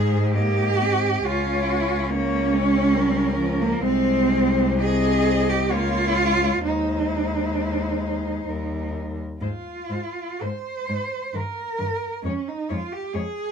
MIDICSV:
0, 0, Header, 1, 5, 480
1, 0, Start_track
1, 0, Key_signature, -4, "major"
1, 0, Tempo, 900901
1, 666, Tempo, 859599
1, 667, Time_signature, 3, 2, 24, 8
1, 2106, Tempo, 969305
1, 2586, Tempo, 921659
1, 4986, Tempo, 991736
1, 5466, Tempo, 931677
1, 5946, Tempo, 891530
1, 7124, End_track
2, 0, Start_track
2, 0, Title_t, "Cello"
2, 0, Program_c, 0, 42
2, 0, Note_on_c, 0, 72, 71
2, 187, Note_on_c, 0, 75, 68
2, 195, Note_off_c, 0, 72, 0
2, 663, Note_off_c, 0, 75, 0
2, 666, Note_on_c, 0, 73, 74
2, 1135, Note_off_c, 0, 73, 0
2, 1146, Note_on_c, 0, 73, 79
2, 1619, Note_on_c, 0, 70, 85
2, 1627, Note_off_c, 0, 73, 0
2, 2102, Note_on_c, 0, 72, 87
2, 2110, Note_off_c, 0, 70, 0
2, 2587, Note_on_c, 0, 75, 89
2, 2595, Note_off_c, 0, 72, 0
2, 3063, Note_on_c, 0, 73, 76
2, 3071, Note_off_c, 0, 75, 0
2, 3544, Note_off_c, 0, 73, 0
2, 3546, Note_on_c, 0, 72, 62
2, 4509, Note_on_c, 0, 70, 51
2, 4517, Note_off_c, 0, 72, 0
2, 4883, Note_off_c, 0, 70, 0
2, 4993, Note_on_c, 0, 72, 53
2, 5031, Note_off_c, 0, 72, 0
2, 5229, Note_on_c, 0, 72, 46
2, 5268, Note_off_c, 0, 72, 0
2, 5474, Note_on_c, 0, 72, 52
2, 5515, Note_off_c, 0, 72, 0
2, 5716, Note_on_c, 0, 72, 46
2, 5757, Note_off_c, 0, 72, 0
2, 5953, Note_on_c, 0, 70, 52
2, 5996, Note_off_c, 0, 70, 0
2, 6193, Note_on_c, 0, 70, 53
2, 6236, Note_off_c, 0, 70, 0
2, 6442, Note_on_c, 0, 73, 58
2, 6485, Note_off_c, 0, 73, 0
2, 6680, Note_on_c, 0, 73, 56
2, 6723, Note_off_c, 0, 73, 0
2, 6923, Note_on_c, 0, 73, 58
2, 6966, Note_off_c, 0, 73, 0
2, 7124, End_track
3, 0, Start_track
3, 0, Title_t, "Cello"
3, 0, Program_c, 1, 42
3, 0, Note_on_c, 1, 68, 89
3, 181, Note_off_c, 1, 68, 0
3, 184, Note_on_c, 1, 67, 107
3, 671, Note_on_c, 1, 65, 98
3, 680, Note_off_c, 1, 67, 0
3, 1154, Note_on_c, 1, 61, 110
3, 1162, Note_off_c, 1, 65, 0
3, 1986, Note_on_c, 1, 58, 100
3, 1994, Note_off_c, 1, 61, 0
3, 2107, Note_off_c, 1, 58, 0
3, 2110, Note_on_c, 1, 60, 113
3, 2579, Note_off_c, 1, 60, 0
3, 2588, Note_on_c, 1, 68, 113
3, 2949, Note_on_c, 1, 67, 98
3, 2957, Note_off_c, 1, 68, 0
3, 3064, Note_on_c, 1, 65, 114
3, 3072, Note_off_c, 1, 67, 0
3, 3544, Note_off_c, 1, 65, 0
3, 3552, Note_on_c, 1, 63, 88
3, 4725, Note_off_c, 1, 63, 0
3, 4989, Note_on_c, 1, 65, 72
3, 5473, Note_on_c, 1, 72, 84
3, 5481, Note_off_c, 1, 65, 0
3, 5961, Note_on_c, 1, 70, 90
3, 5969, Note_off_c, 1, 72, 0
3, 6438, Note_off_c, 1, 70, 0
3, 6446, Note_on_c, 1, 61, 80
3, 6567, Note_on_c, 1, 63, 74
3, 6575, Note_off_c, 1, 61, 0
3, 6693, Note_on_c, 1, 65, 79
3, 6701, Note_off_c, 1, 63, 0
3, 6806, Note_on_c, 1, 67, 77
3, 6814, Note_off_c, 1, 65, 0
3, 6916, Note_on_c, 1, 68, 90
3, 6924, Note_off_c, 1, 67, 0
3, 7124, Note_off_c, 1, 68, 0
3, 7124, End_track
4, 0, Start_track
4, 0, Title_t, "Cello"
4, 0, Program_c, 2, 42
4, 0, Note_on_c, 2, 56, 72
4, 190, Note_on_c, 2, 58, 70
4, 198, Note_off_c, 2, 56, 0
4, 432, Note_on_c, 2, 60, 70
4, 440, Note_off_c, 2, 58, 0
4, 665, Note_off_c, 2, 60, 0
4, 668, Note_on_c, 2, 61, 70
4, 1143, Note_on_c, 2, 58, 85
4, 1152, Note_off_c, 2, 61, 0
4, 1378, Note_on_c, 2, 56, 84
4, 1387, Note_off_c, 2, 58, 0
4, 1619, Note_on_c, 2, 55, 88
4, 1628, Note_off_c, 2, 56, 0
4, 1854, Note_off_c, 2, 55, 0
4, 1857, Note_on_c, 2, 53, 86
4, 2103, Note_on_c, 2, 56, 81
4, 2111, Note_off_c, 2, 53, 0
4, 2587, Note_on_c, 2, 60, 90
4, 2594, Note_off_c, 2, 56, 0
4, 3060, Note_on_c, 2, 58, 77
4, 3068, Note_off_c, 2, 60, 0
4, 3304, Note_on_c, 2, 56, 68
4, 3312, Note_off_c, 2, 58, 0
4, 3546, Note_off_c, 2, 56, 0
4, 3549, Note_on_c, 2, 56, 62
4, 4484, Note_off_c, 2, 56, 0
4, 4507, Note_on_c, 2, 55, 48
4, 4874, Note_off_c, 2, 55, 0
4, 4989, Note_on_c, 2, 56, 50
4, 5028, Note_off_c, 2, 56, 0
4, 5228, Note_on_c, 2, 56, 53
4, 5267, Note_off_c, 2, 56, 0
4, 5476, Note_on_c, 2, 56, 55
4, 5518, Note_off_c, 2, 56, 0
4, 5721, Note_on_c, 2, 56, 47
4, 5762, Note_off_c, 2, 56, 0
4, 5951, Note_on_c, 2, 51, 50
4, 5994, Note_off_c, 2, 51, 0
4, 6188, Note_on_c, 2, 51, 47
4, 6231, Note_off_c, 2, 51, 0
4, 6429, Note_on_c, 2, 56, 56
4, 6472, Note_off_c, 2, 56, 0
4, 6681, Note_on_c, 2, 56, 56
4, 6724, Note_off_c, 2, 56, 0
4, 6919, Note_on_c, 2, 56, 64
4, 6962, Note_off_c, 2, 56, 0
4, 7124, End_track
5, 0, Start_track
5, 0, Title_t, "Cello"
5, 0, Program_c, 3, 42
5, 0, Note_on_c, 3, 44, 78
5, 645, Note_off_c, 3, 44, 0
5, 659, Note_on_c, 3, 37, 78
5, 2079, Note_off_c, 3, 37, 0
5, 2107, Note_on_c, 3, 36, 96
5, 3064, Note_on_c, 3, 37, 78
5, 3072, Note_off_c, 3, 36, 0
5, 3543, Note_off_c, 3, 37, 0
5, 3546, Note_on_c, 3, 39, 64
5, 4483, Note_off_c, 3, 39, 0
5, 4501, Note_on_c, 3, 39, 49
5, 4871, Note_off_c, 3, 39, 0
5, 4988, Note_on_c, 3, 44, 65
5, 5027, Note_off_c, 3, 44, 0
5, 5223, Note_on_c, 3, 44, 54
5, 5262, Note_off_c, 3, 44, 0
5, 5476, Note_on_c, 3, 44, 58
5, 5517, Note_off_c, 3, 44, 0
5, 5720, Note_on_c, 3, 44, 59
5, 5761, Note_off_c, 3, 44, 0
5, 5951, Note_on_c, 3, 43, 59
5, 5994, Note_off_c, 3, 43, 0
5, 6198, Note_on_c, 3, 43, 60
5, 6241, Note_off_c, 3, 43, 0
5, 6438, Note_on_c, 3, 41, 70
5, 6481, Note_off_c, 3, 41, 0
5, 6690, Note_on_c, 3, 41, 66
5, 6733, Note_off_c, 3, 41, 0
5, 6922, Note_on_c, 3, 41, 64
5, 6965, Note_off_c, 3, 41, 0
5, 7124, End_track
0, 0, End_of_file